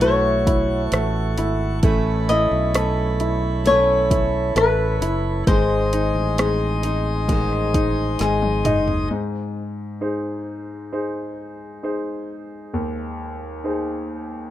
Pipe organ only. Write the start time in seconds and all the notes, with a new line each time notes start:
Already playing: A4 F#5 C#6
1.83 C#5 B5
5.48 G#4 D#5 C6 D#6